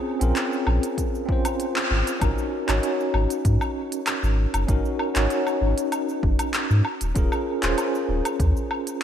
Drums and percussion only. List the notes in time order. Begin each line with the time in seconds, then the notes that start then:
0.21 closed hi-hat, shaker
0.36 clap, closed hi-hat, shaker
0.53 shaker
0.67 low woodblock
0.83 closed hi-hat, shaker
0.98 kick, closed hi-hat, shaker
1.15 shaker
1.29 kick
1.45 closed hi-hat, low woodblock, shaker
1.60 closed hi-hat, shaker
1.76 clap, shaker
2.07 closed hi-hat, shaker
2.21 kick, closed hi-hat, low woodblock, shaker
2.38 shaker
2.69 clap, closed hi-hat, low woodblock, shaker
2.83 closed hi-hat, shaker
3.00 shaker
3.14 low woodblock
3.30 closed hi-hat, shaker
3.45 kick, closed hi-hat, shaker
3.61 low woodblock, shaker
3.92 closed hi-hat, shaker
4.07 clap, closed hi-hat, low woodblock, shaker
4.24 shaker
4.54 closed hi-hat, low woodblock, shaker
4.68 kick, closed hi-hat, shaker
4.85 shaker
4.99 low woodblock
5.16 clap, closed hi-hat, shaker
5.30 closed hi-hat, shaker
5.47 low woodblock, shaker
5.78 closed hi-hat, shaker
5.92 closed hi-hat, low woodblock, shaker
6.09 shaker
6.23 kick
6.39 closed hi-hat, low woodblock, shaker
6.54 clap, closed hi-hat, shaker
6.71 shaker
6.85 low woodblock
7.01 closed hi-hat, shaker
7.16 kick, closed hi-hat, shaker
7.32 low woodblock, shaker
7.63 clap, closed hi-hat, shaker
7.78 closed hi-hat, low woodblock, shaker
7.95 shaker
8.25 closed hi-hat, low woodblock, shaker
8.40 kick, closed hi-hat, shaker
8.57 shaker
8.71 low woodblock
8.87 closed hi-hat, shaker